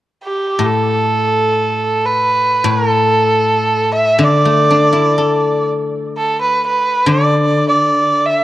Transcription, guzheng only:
0, 0, Header, 1, 2, 480
1, 0, Start_track
1, 0, Tempo, 500000
1, 8101, End_track
2, 0, Start_track
2, 0, Title_t, "Guzheng"
2, 0, Program_c, 0, 107
2, 566, Note_on_c, 0, 45, 42
2, 2522, Note_off_c, 0, 45, 0
2, 2534, Note_on_c, 0, 45, 48
2, 4017, Note_on_c, 0, 50, 46
2, 4041, Note_off_c, 0, 45, 0
2, 4273, Note_on_c, 0, 57, 34
2, 4516, Note_on_c, 0, 62, 37
2, 4729, Note_on_c, 0, 64, 35
2, 4972, Note_on_c, 0, 69, 35
2, 6130, Note_off_c, 0, 57, 0
2, 6354, Note_off_c, 0, 62, 0
2, 6552, Note_off_c, 0, 64, 0
2, 6738, Note_off_c, 0, 50, 0
2, 6755, Note_off_c, 0, 69, 0
2, 6781, Note_on_c, 0, 50, 45
2, 8101, Note_off_c, 0, 50, 0
2, 8101, End_track
0, 0, End_of_file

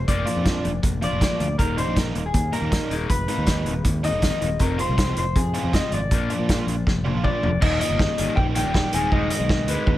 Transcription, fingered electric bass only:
0, 0, Header, 1, 2, 480
1, 0, Start_track
1, 0, Key_signature, -3, "major"
1, 0, Tempo, 376648
1, 98, Time_signature, 4, 2, 24, 8
1, 12717, End_track
2, 0, Start_track
2, 0, Title_t, "Fingered electric bass"
2, 0, Program_c, 0, 33
2, 105, Note_on_c, 0, 29, 84
2, 302, Note_off_c, 0, 29, 0
2, 459, Note_on_c, 0, 41, 74
2, 824, Note_on_c, 0, 29, 80
2, 843, Note_off_c, 0, 41, 0
2, 1022, Note_off_c, 0, 29, 0
2, 1064, Note_on_c, 0, 29, 74
2, 1363, Note_off_c, 0, 29, 0
2, 1412, Note_on_c, 0, 29, 77
2, 1616, Note_off_c, 0, 29, 0
2, 1780, Note_on_c, 0, 38, 69
2, 1981, Note_off_c, 0, 38, 0
2, 2026, Note_on_c, 0, 27, 76
2, 2324, Note_off_c, 0, 27, 0
2, 2379, Note_on_c, 0, 34, 72
2, 2681, Note_off_c, 0, 34, 0
2, 2743, Note_on_c, 0, 27, 78
2, 2943, Note_off_c, 0, 27, 0
2, 2983, Note_on_c, 0, 39, 74
2, 3184, Note_off_c, 0, 39, 0
2, 3333, Note_on_c, 0, 39, 77
2, 3538, Note_off_c, 0, 39, 0
2, 3703, Note_on_c, 0, 27, 79
2, 3904, Note_off_c, 0, 27, 0
2, 3949, Note_on_c, 0, 29, 83
2, 4148, Note_off_c, 0, 29, 0
2, 4302, Note_on_c, 0, 39, 81
2, 4660, Note_on_c, 0, 27, 90
2, 4680, Note_off_c, 0, 39, 0
2, 4863, Note_off_c, 0, 27, 0
2, 4906, Note_on_c, 0, 39, 76
2, 5207, Note_off_c, 0, 39, 0
2, 5258, Note_on_c, 0, 27, 86
2, 5462, Note_off_c, 0, 27, 0
2, 5627, Note_on_c, 0, 27, 77
2, 5828, Note_off_c, 0, 27, 0
2, 5866, Note_on_c, 0, 29, 76
2, 6168, Note_off_c, 0, 29, 0
2, 6234, Note_on_c, 0, 36, 76
2, 6532, Note_off_c, 0, 36, 0
2, 6590, Note_on_c, 0, 29, 88
2, 6791, Note_off_c, 0, 29, 0
2, 6827, Note_on_c, 0, 41, 71
2, 7029, Note_off_c, 0, 41, 0
2, 7184, Note_on_c, 0, 41, 73
2, 7387, Note_off_c, 0, 41, 0
2, 7545, Note_on_c, 0, 32, 72
2, 7748, Note_off_c, 0, 32, 0
2, 7789, Note_on_c, 0, 34, 91
2, 7990, Note_off_c, 0, 34, 0
2, 8144, Note_on_c, 0, 46, 78
2, 8494, Note_on_c, 0, 34, 77
2, 8513, Note_off_c, 0, 46, 0
2, 8701, Note_off_c, 0, 34, 0
2, 8753, Note_on_c, 0, 29, 76
2, 9052, Note_off_c, 0, 29, 0
2, 9109, Note_on_c, 0, 34, 80
2, 9310, Note_off_c, 0, 34, 0
2, 9473, Note_on_c, 0, 29, 67
2, 9672, Note_off_c, 0, 29, 0
2, 9711, Note_on_c, 0, 27, 80
2, 9910, Note_off_c, 0, 27, 0
2, 10073, Note_on_c, 0, 31, 76
2, 10271, Note_off_c, 0, 31, 0
2, 10434, Note_on_c, 0, 31, 82
2, 10532, Note_off_c, 0, 31, 0
2, 10666, Note_on_c, 0, 34, 78
2, 11025, Note_off_c, 0, 34, 0
2, 11025, Note_on_c, 0, 27, 74
2, 11225, Note_off_c, 0, 27, 0
2, 11387, Note_on_c, 0, 27, 81
2, 11585, Note_off_c, 0, 27, 0
2, 11623, Note_on_c, 0, 27, 85
2, 11822, Note_off_c, 0, 27, 0
2, 11976, Note_on_c, 0, 35, 75
2, 12335, Note_off_c, 0, 35, 0
2, 12335, Note_on_c, 0, 38, 80
2, 12436, Note_off_c, 0, 38, 0
2, 12577, Note_on_c, 0, 39, 84
2, 12717, Note_off_c, 0, 39, 0
2, 12717, End_track
0, 0, End_of_file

